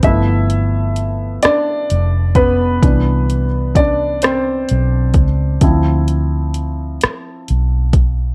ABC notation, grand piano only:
X:1
M:6/8
L:1/8
Q:3/8=43
K:Ddor
V:1 name="Grand piano"
[Ee]2 z [Dd]2 [B,B]- | [B,B]2 [Dd] [Cc]2 z | z6 |]
V:2 name="Grand piano"
[F,A,B,]6 | [E,B,D] z4 z | [F,CE]6 |]